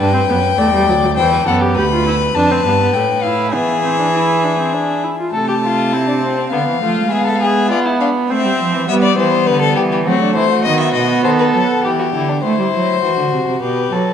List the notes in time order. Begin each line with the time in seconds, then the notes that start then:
0.00 G2 D4 B4 G5
0.14 C4
0.29 F#2 B3
0.58 E2 A3 D5
0.75 G3
0.88 D2 F#3
1.03 F#3
1.17 E2 E3 C5 G5
1.32 B4
1.46 F#2 B3 A4 F#5
1.61 G4
1.75 D2 G4 B4 B5
1.93 F4
2.07 E4
2.35 F2 D4 A5
2.51 C4
2.64 G2 B3
2.81 B3
2.94 A2 A3 G5
3.22 E4 F5
3.54 E3 B3 G#4 E5
3.85 C4
4.00 D4
4.15 E4
4.44 D4
4.59 C4
4.74 D4
5.04 E4
5.20 F4
5.34 C3 A3 A4 A5
5.49 G4
5.64 F4
5.93 C4 E4
6.08 D4
6.23 C4
6.38 C4
6.51 D3 B3 F5
6.67 E3
6.82 F3 A3 F4
6.97 G#3
7.11 B3 G#4 E5
7.19 F5
7.27 A4 E5
7.36 F5
7.42 G#4 E5
7.71 B3 F4 D5
7.86 E4
8.00 D4 F5
8.29 A3 C4 E5
8.45 G3
8.60 F3
8.74 E3
8.89 G3 B3 E5
9.03 D5
9.18 E3 G3 C5
9.47 D3 B4
9.62 A4
9.77 E3 G4
9.92 G4
10.06 F#3 A3 C4 F#4
10.22 D4
10.35 E3 E4 C5
10.50 F#4
10.65 D#3 B3 D#5
10.80 E5
10.94 B2 D#5
11.24 D#3 A4 C5
11.39 B4
11.54 F#3 A4
11.84 E3 G4
11.99 F#4
12.14 D3 E4
12.29 D4
12.44 A3 E4 C5
12.59 G3
12.74 F#3
13.03 E3 F#4
13.18 D3
13.33 C3
13.48 C3
13.63 B2 G4 B4
13.92 F#3 A4